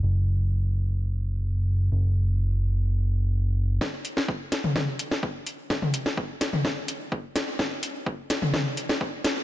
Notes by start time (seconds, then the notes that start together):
0.03 F#1
1.92 F#1
3.81 kick, snare
4.05 closed hi-hat
4.17 snare
4.28 kick
4.52 snare, closed hi-hat
4.64 mid tom
4.76 kick, snare, mid tom
4.99 closed hi-hat
5.11 snare
5.23 kick
5.47 closed hi-hat
5.70 kick, snare
5.82 mid tom
5.94 closed hi-hat
6.06 snare
6.17 kick
6.41 snare, closed hi-hat
6.53 mid tom
6.65 kick, snare
6.88 closed hi-hat
7.12 kick
7.36 snare, closed hi-hat
7.59 kick, snare
7.83 closed hi-hat
8.06 kick
8.30 snare, closed hi-hat
8.42 mid tom
8.54 kick, snare, mid tom
8.77 closed hi-hat
8.89 snare
9.01 kick
9.24 snare, closed hi-hat